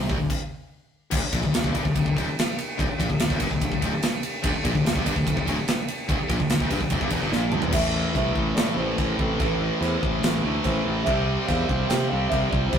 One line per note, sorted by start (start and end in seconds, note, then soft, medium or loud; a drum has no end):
0.09 0.19 D1 medium
0.09 0.18 D2 loud
0.09 kick loud
0.19 0.30 D1 medium
0.19 0.30 D2 medium
0.30 kick loud
0.30 crash medium
1.11 1.22 D1 loud
1.11 1.22 D2 loud
1.11 kick loud
1.11 crash loud
1.24 muted distorted electric guitar stroke medium
1.24 muted fingered electric bass stroke soft
1.33 1.43 A#1 loud
1.33 1.44 A#2 loud
1.33 kick loud
1.33 ride medium
1.43 1.54 D1 medium
1.43 1.54 D2 medium
1.43 kick medium
1.54 1.64 D1 medium
1.54 1.64 D2 medium
1.54 snare loud
1.54 ride loud
1.64 1.74 D1 medium
1.64 1.75 D2 loud
1.64 kick loud
1.72 1.85 G1 medium
1.72 1.83 G2 loud
1.72 kick medium
1.72 ride medium
1.76 1.84 G2 loud
1.85 1.95 D1 medium
1.85 1.95 D2 medium
1.85 kick medium
1.96 2.05 D1 medium
1.96 2.06 D2 medium
1.96 kick medium
1.96 ride loud
2.06 2.16 D1 medium
2.06 2.15 D2 medium
2.06 kick medium
2.16 2.26 D1 medium
2.16 2.26 D2 loud
2.16 kick medium
2.16 ride medium
2.39 snare loud
2.39 ride loud
2.59 ride medium
2.79 2.89 D1 medium
2.79 2.86 D2 loud
2.79 kick loud
2.79 ride loud
2.88 muted distorted electric guitar stroke medium
2.88 muted fingered electric bass stroke soft
2.99 3.09 A#1 loud
2.99 3.09 A#2 loud
2.99 kick loud
2.99 ride medium
3.09 3.19 D1 medium
3.09 3.19 D2 medium
3.09 kick medium
3.20 3.30 D1 medium
3.20 3.29 D2 medium
3.20 snare loud
3.20 ride loud
3.30 3.40 D1 medium
3.30 3.40 D2 loud
3.30 kick loud
3.40 3.50 G1 loud
3.40 3.51 G2 loud
3.40 kick medium
3.40 ride medium
3.51 3.61 D1 medium
3.51 3.60 D2 medium
3.51 kick medium
3.61 3.71 D1 medium
3.61 3.70 D2 medium
3.61 kick loud
3.61 ride loud
3.72 3.81 D1 medium
3.72 3.80 D2 medium
3.72 kick medium
3.82 3.92 D1 loud
3.82 3.91 D2 loud
3.82 kick medium
3.82 ride medium
4.03 snare loud
4.03 ride loud
4.23 ride medium
4.43 4.54 D1 loud
4.43 4.53 D2 loud
4.43 kick loud
4.43 ride loud
4.55 muted distorted electric guitar stroke medium
4.55 muted fingered electric bass stroke soft
4.64 4.74 A#1 loud
4.64 4.74 A#2 loud
4.64 kick loud
4.64 ride medium
4.75 4.85 D1 medium
4.75 4.84 D2 medium
4.75 kick medium
4.85 4.95 D1 medium
4.85 4.95 D2 medium
4.85 snare loud
4.85 ride loud
4.96 5.05 D1 medium
4.96 5.05 D2 loud
4.96 kick loud
5.06 5.16 G1 medium
5.06 5.16 G2 loud
5.06 kick medium
5.06 ride medium
5.16 5.26 D1 medium
5.16 5.25 D2 medium
5.16 kick medium
5.27 5.36 D1 medium
5.27 5.37 D2 medium
5.27 kick loud
5.27 ride loud
5.37 5.47 D1 medium
5.37 5.45 D2 medium
5.37 kick medium
5.47 5.57 D1 medium
5.47 5.57 D2 loud
5.47 kick medium
5.47 ride medium
5.68 snare loud
5.68 ride loud
5.88 ride medium
6.09 6.19 D1 loud
6.09 6.18 D2 loud
6.09 kick loud
6.09 ride loud
6.19 muted distorted electric guitar stroke medium
6.19 muted fingered electric bass stroke soft
6.29 6.39 A#1 loud
6.29 6.39 A#2 loud
6.29 kick loud
6.29 ride medium
6.39 6.49 D1 medium
6.39 6.49 D2 medium
6.39 kick medium
6.49 6.59 D1 medium
6.49 6.60 D2 medium
6.49 snare loud
6.49 ride loud
6.60 6.70 D1 medium
6.60 6.71 D2 loud
6.60 kick loud
6.71 6.80 G1 loud
6.71 6.81 G2 loud
6.71 kick medium
6.71 ride medium
6.81 6.91 D1 medium
6.81 6.91 D2 medium
6.81 kick medium
6.90 7.01 F1 medium
6.90 7.01 F2 loud
6.90 kick loud
6.90 ride loud
7.01 7.11 G1 medium
7.01 7.11 G2 medium
7.01 kick medium
7.10 7.22 E1 medium
7.10 7.22 E2 loud
7.10 kick medium
7.10 ride medium
7.22 7.32 G1 loud
7.22 7.32 G2 loud
7.32 7.52 A#1 loud
7.32 7.53 A#2 loud
7.32 7.71 F4 medium
7.32 7.75 D5 medium
7.32 snare medium
7.52 7.63 D1 loud
7.52 7.63 D2 loud
7.52 mid tom loud
7.62 7.74 E1 medium
7.62 7.73 E2 loud
7.62 floor tom loud
7.72 8.03 A1 loud
7.72 7.93 A2 loud
7.72 7.94 E3 loud
7.72 7.95 A3 loud
7.72 8.12 A4 medium
7.72 8.12 E5 loud
7.72 kick loud
7.72 crash loud
7.72 china medium
7.94 8.15 A2 medium
7.94 8.15 E3 medium
7.94 8.16 A3 loud
8.13 8.30 C2 medium
8.13 8.37 A2 medium
8.13 8.37 E3 loud
8.13 8.38 A3 loud
8.13 8.53 A4 medium
8.13 8.59 E5 medium
8.13 kick medium
8.13 china medium
8.36 8.51 A1 medium
8.36 8.55 A2 medium
8.36 8.57 E3 loud
8.36 8.58 A3 loud
8.36 kick medium
8.55 8.71 A2 loud
8.55 8.77 A2 medium
8.55 8.78 E3 medium
8.55 8.78 A4 medium
8.55 8.78 D5 medium
8.55 snare loud
8.55 china medium
8.59 8.78 A3 medium
8.76 8.92 A1 medium
8.76 8.98 A2 medium
8.76 8.99 E3 medium
8.76 8.99 A3 medium
8.76 9.18 E4 medium
8.76 9.20 C5 medium
8.98 9.13 A1 loud
8.98 9.19 A2 loud
8.98 9.20 E3 loud
8.98 9.20 A3 loud
8.98 kick medium
8.98 china medium
9.19 9.34 A1 loud
9.19 9.38 A2 medium
9.19 9.40 E3 loud
9.19 9.40 A3 loud
9.19 9.39 C4 medium
9.19 9.39 A4 medium
9.19 kick medium
9.39 9.69 A1 loud
9.39 9.60 A2 loud
9.39 9.61 E3 loud
9.39 9.60 A3 loud
9.39 9.79 E4 medium
9.39 9.84 B4 loud
9.39 kick loud
9.39 china medium
9.61 9.79 A2 medium
9.61 9.82 E3 medium
9.61 9.81 A3 medium
9.80 9.96 E2 medium
9.80 10.03 A2 medium
9.80 10.05 E3 medium
9.80 10.04 A3 medium
9.80 10.60 E4 medium
9.80 10.62 C5 medium
9.80 china medium
10.03 10.18 A1 medium
10.03 10.23 A2 medium
10.03 10.24 E3 loud
10.03 10.24 A3 loud
10.03 kick medium
10.23 10.39 A1 loud
10.23 10.44 A2 medium
10.23 10.46 E3 medium
10.23 10.45 A3 medium
10.23 snare loud
10.23 china medium
10.44 10.59 D2 medium
10.44 10.65 A2 medium
10.44 10.66 E3 medium
10.44 10.66 A3 loud
10.63 10.80 A1 loud
10.63 10.85 A2 loud
10.63 10.87 E3 loud
10.63 10.86 A3 loud
10.63 11.04 E4 medium
10.63 11.07 C5 medium
10.63 kick medium
10.63 china medium
10.86 11.01 A1 medium
10.86 11.06 A2 medium
10.86 11.08 E3 loud
10.86 11.06 A3 loud
11.03 11.43 G4 medium
11.03 11.44 E5 loud
11.03 china medium
11.07 11.36 C2 loud
11.07 11.28 C3 loud
11.07 11.28 G3 loud
11.07 11.29 C4 loud
11.07 kick loud
11.28 11.49 C3 medium
11.28 11.49 G3 medium
11.28 11.50 C4 loud
11.46 11.63 E2 loud
11.46 11.69 C3 medium
11.46 11.70 G3 loud
11.46 11.86 C5 medium
11.46 11.90 F5 loud
11.46 kick medium
11.46 china medium
11.51 11.71 C4 medium
11.69 11.85 C2 medium
11.69 11.90 C3 medium
11.69 11.92 G3 loud
11.69 11.91 C4 loud
11.69 kick medium
11.88 12.05 C3 loud
11.88 12.11 C3 medium
11.88 12.13 G3 medium
11.88 12.12 C4 medium
11.88 12.08 C5 medium
11.88 12.10 G5 loud
11.88 snare loud
11.88 china medium
12.09 12.26 C2 medium
12.09 12.30 C3 medium
12.09 12.29 A4 medium
12.09 12.31 F5 loud
12.13 12.32 G3 medium
12.13 12.32 C4 medium
12.28 12.50 C3 loud
12.28 12.49 G4 medium
12.28 12.51 E5 medium
12.28 kick medium
12.28 china medium
12.32 12.47 C2 medium
12.32 12.52 G3 loud
12.32 12.52 C4 loud
12.49 12.67 C2 loud
12.49 12.72 C3 medium
12.49 12.74 G3 medium
12.49 12.73 C4 loud
12.49 12.67 F4 medium
12.49 12.72 D5 medium
12.49 kick medium
12.68 12.79 E4 medium
12.68 12.79 C5 loud
12.73 12.79 C2 loud
12.73 12.79 C3 loud
12.73 12.79 G3 loud
12.73 12.79 C4 loud
12.73 kick loud
12.73 china medium